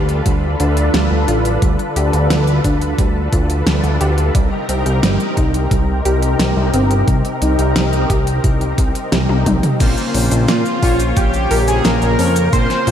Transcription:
Already playing: analog synth bass D2, analog synth pad D3 D4 F4 A4 B4, synth arpeggio sound G4
0.09 closed hi-hat
0.26 analog synth bass D2, synth arpeggio sound G3, kick, closed hi-hat
0.60 analog synth bass D2, synth arpeggio sound D4, closed hi-hat
0.77 closed hi-hat
0.94 analog synth bass D2, synth arpeggio sound G3, snare, closed hi-hat
1.11 analog synth bass D2
1.28 analog synth bass A1, synth arpeggio sound F4, closed hi-hat
1.45 closed hi-hat
1.62 analog synth bass D2, synth arpeggio sound G3, kick, closed hi-hat
1.79 closed hi-hat
1.96 analog synth bass D2, synth arpeggio sound G4, closed hi-hat
2.13 analog synth bass D2, closed hi-hat
2.30 analog synth bass D2, synth arpeggio sound G3, snare, closed hi-hat
2.47 closed hi-hat
2.64 analog synth bass D2, synth arpeggio sound D4, kick, closed hi-hat
2.81 closed hi-hat
2.98 analog synth bass D2, synth arpeggio sound G3, kick, closed hi-hat
3.33 analog synth bass D2, synth arpeggio sound F4, kick, closed hi-hat
3.50 closed hi-hat
3.67 analog synth bass D2, synth arpeggio sound G3, snare, closed hi-hat
3.84 analog synth bass D2, closed hi-hat
4.01 analog synth bass D2, synth arpeggio sound G4, closed hi-hat
4.18 closed hi-hat
4.35 analog synth bass C2, analog synth pad C3 C4 D#4 G4 A#4, synth arpeggio sound G3, kick, closed hi-hat
4.69 analog synth bass C2, synth arpeggio sound C4, closed hi-hat
4.86 analog synth bass C2, closed hi-hat
5.03 analog synth bass G1, synth arpeggio sound G3, snare, closed hi-hat
5.20 closed hi-hat
5.37 analog synth bass C2, synth arpeggio sound D#4, kick, closed hi-hat
5.54 closed hi-hat
5.71 analog synth bass C2, synth arpeggio sound G3, kick, closed hi-hat
6.05 analog synth bass C2, synth arpeggio sound G4, closed hi-hat
6.22 closed hi-hat
6.39 analog synth bass C2, synth arpeggio sound G3, snare, closed hi-hat
6.57 analog synth bass C2
6.74 analog synth bass G1, synth arpeggio sound C4, closed hi-hat
6.91 closed hi-hat
7.08 analog synth bass C2, synth arpeggio sound G3, kick, closed hi-hat
7.25 closed hi-hat
7.42 analog synth bass C2, synth arpeggio sound D#4, closed hi-hat
7.59 analog synth bass C2, closed hi-hat
7.76 analog synth bass C2, synth arpeggio sound G3, snare, closed hi-hat
7.93 closed hi-hat
8.10 analog synth bass C2, synth arpeggio sound G4, kick, closed hi-hat
8.27 closed hi-hat
8.44 analog synth bass C2, synth arpeggio sound G3, kick, closed hi-hat
8.61 closed hi-hat
8.78 analog synth bass C2, synth arpeggio sound C4, kick, closed hi-hat
8.95 closed hi-hat
9.12 analog synth bass C2, synth arpeggio sound G3, snare, closed hi-hat
9.29 analog synth bass C2, high tom
9.46 analog synth bass C2, synth arpeggio sound D#4, kick, closed hi-hat, mid tom
9.63 closed hi-hat, mid tom
9.80 analog synth bass A#1, analog synth pad C#3 A#3, synth arpeggio sound A#3, analog polysynth A#3 C4 C#4 F4 C5, kick, closed hi-hat, crash, shaker
9.97 closed hi-hat, shaker
10.14 analog synth bass A#1, synth arpeggio sound C#4, open hi-hat
10.31 analog synth bass A#1, closed hi-hat, shaker
10.48 analog synth bass A#2, synth arpeggio sound A#3, supersaw synth F4, fm electric piano F5, snare, closed hi-hat, shaker
10.66 closed hi-hat, shaker
10.83 analog synth bass A#1, analog polysynth A#3 C#4 F4 C5 C#5, synth arpeggio sound F4, kick, open hi-hat
11.00 closed hi-hat, shaker
11.17 analog synth bass A#1, synth arpeggio sound A#3, supersaw synth G4, fm electric piano G5, kick, closed hi-hat, shaker
11.34 closed hi-hat, shaker
11.51 analog synth bass A#1, synth arpeggio sound A#4, open hi-hat
11.68 supersaw synth G#4, fm electric piano G#5, closed hi-hat, shaker
11.85 analog synth bass A#1, synth arpeggio sound A#3, supersaw synth A#4, fm electric piano A#5, snare, closed hi-hat, shaker
12.02 analog synth bass A#1, closed hi-hat, shaker
12.19 analog synth bass F2, synth arpeggio sound C#4, open hi-hat
12.36 closed hi-hat, shaker
12.53 analog synth bass A#1, analog polysynth A#3 C4 C#4 F4 C5, synth arpeggio sound A#3, supersaw synth C5, fm electric piano C6, kick, closed hi-hat, shaker
12.70 snare, closed hi-hat, shaker
12.87 analog synth bass A#1, synth arpeggio sound F4, open hi-hat

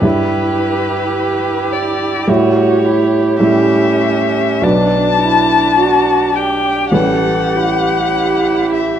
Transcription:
0.02 grand piano G2 G3 E4 E5, viola E4, cello G4, violin B4
1.73 violin D5
2.27 grand piano A2 G3 E4 E5, cello F#4, viola G4, violin C#5
2.85 cello E4
3.40 grand piano A2 G3 E4 E5, cello C#4, violin E5
4.61 grand piano B1 F#3 D4 B4, cello D4, viola D4, violin A5
5.20 cello E4
5.78 cello F#4
6.34 cello G4, violin G5
6.92 grand piano A1 G3 C#4 B4, viola G4, cello A4, violin F#5
7.55 cello E4
8.74 violin E5

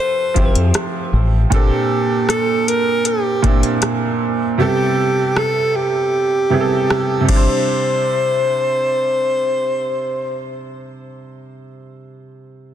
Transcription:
Already playing: grand piano F3 C4 E4 G4 A4
0.00 alto saxophone C5
0.34 fingered electric bass F1, grand piano F3 C4 E4 G4 C5, kick, closed hi-hat
0.55 fingered electric bass F2, closed hi-hat
0.74 cross-stick, closed hi-hat
1.13 fingered electric bass A1
1.50 grand piano A#2 A#3 C4 D4 A4, alto saxophone G4, kick, closed hi-hat
2.29 alto saxophone A4, cross-stick, closed hi-hat
2.68 alto saxophone A#4, closed hi-hat
3.05 alto saxophone G4, closed hi-hat
3.42 grand piano A#2 A#3 C4 D4 E4, kick, closed hi-hat
3.63 closed hi-hat
3.82 cross-stick, closed hi-hat
4.58 grand piano C3 G3 B3 E4 A4, alto saxophone G4
5.37 alto saxophone A4, cross-stick
5.76 alto saxophone G4
6.50 grand piano C3 G3 B3 E4 G#4
6.60 grand piano A4
6.90 cross-stick
7.21 grand piano C3
7.25 grand piano G3 D4, kick, crash
7.29 grand piano E4, alto saxophone C5
7.36 grand piano C5

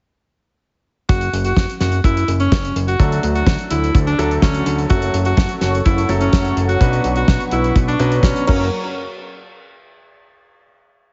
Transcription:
1.09 analog synth bass F#1, alto saxophone F#4, kick, closed hi-hat
1.21 closed hi-hat
1.33 analog synth bass F#1, closed hi-hat
1.45 alto saxophone F#4, closed hi-hat
1.57 analog synth bass F#1, kick, snare, closed hi-hat
1.70 closed hi-hat
1.80 analog synth bass F#1, alto saxophone F#4, snare, closed hi-hat
1.92 closed hi-hat
2.04 analog synth bass F#1, alto saxophone E4, kick, closed hi-hat
2.17 closed hi-hat
2.28 analog synth bass F#1, closed hi-hat
2.40 alto saxophone C#4, closed hi-hat
2.52 analog synth bass F#1, kick, snare, closed hi-hat
2.65 closed hi-hat
2.76 analog synth bass F#1, closed hi-hat
2.88 alto saxophone F#4, closed hi-hat
3.00 analog synth bass D2, grand piano F#3 A3 D4 A4, kick, closed hi-hat
3.12 closed hi-hat
3.23 analog synth bass D2, closed hi-hat
3.35 alto saxophone F#4, closed hi-hat
3.47 analog synth bass D2, kick, snare, closed hi-hat
3.59 closed hi-hat
3.71 analog synth bass D2, alto saxophone E4, closed hi-hat
3.84 closed hi-hat
3.95 analog synth bass D2, kick, closed hi-hat
4.07 alto saxophone D4, closed hi-hat
4.19 analog synth bass D2, grand piano D3 F#3 A3 A4, closed hi-hat
4.31 closed hi-hat
4.42 analog synth bass D2, alto saxophone C#4, kick, snare, closed hi-hat
4.54 closed hi-hat
4.66 analog synth bass D2, closed hi-hat
4.78 closed hi-hat
4.90 analog synth bass F#1, grand piano F#3 A3 C#4 A4, alto saxophone F#4, analog synth pad A4 C#5 F#5 C#6, kick, closed hi-hat
5.02 closed hi-hat
5.14 analog synth bass F#1, closed hi-hat
5.25 alto saxophone F#4, closed hi-hat
5.37 analog synth bass F#1, kick, snare, closed hi-hat
5.49 closed hi-hat
5.61 analog synth bass F#1, alto saxophone F#4, snare, closed hi-hat
5.75 closed hi-hat
5.85 analog synth bass F#1, alto saxophone E4, kick, closed hi-hat
5.98 closed hi-hat
6.09 analog synth bass F#1, grand piano F#3 A3 C#4 A4, closed hi-hat
6.21 alto saxophone C#4, closed hi-hat
6.33 analog synth bass F#1, kick, snare, closed hi-hat
6.45 closed hi-hat
6.57 analog synth bass F#1, closed hi-hat
6.69 alto saxophone F#4, closed hi-hat
6.81 analog synth bass B1, grand piano B2 F#3 C#4 D4 B4, analog synth pad B4 C#6, kick, closed hi-hat
6.93 closed hi-hat
7.04 analog synth bass B1, closed hi-hat
7.16 alto saxophone F#4, closed hi-hat
7.28 analog synth bass B1, kick, snare, closed hi-hat
7.40 closed hi-hat
7.51 analog synth bass B1, alto saxophone E4, closed hi-hat
7.64 closed hi-hat
7.76 analog synth bass B1, kick, closed hi-hat
7.88 alto saxophone D4, closed hi-hat
7.99 analog synth bass B1, grand piano B2 F#3 C#4 D4 B4, closed hi-hat
8.12 closed hi-hat
8.23 analog synth bass B1, alto saxophone C#4, kick, snare, closed hi-hat
8.36 closed hi-hat
8.47 analog synth bass F#1, analog synth pad F#3 F#4 A#4 C#5 C#6, grand piano F#3 A#3 C#4 A#4, alto saxophone C#4, kick, crash

